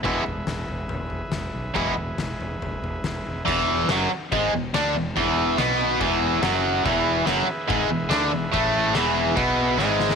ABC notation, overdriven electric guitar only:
X:1
M:4/4
L:1/8
Q:1/4=142
K:Emix
V:1 name="Overdriven electric guitar" clef=bass
[E,,B,,E,G,B,E] z6 z | [E,,B,,E,G,B,E] z6 z | [E,,E,]2 [F,,F,] z [G,,G,] E,, [D,D] E,, | [E,,E,]2 [B,,B,]2 [E,,E,]2 [F,,F,]2 |
[E,,E,]2 [F,,F,] z [G,,G,] E,, [D,D] E,, | [A,,A,]2 [E,,E,]2 [B,,B,]2 [G,,G,]2 |]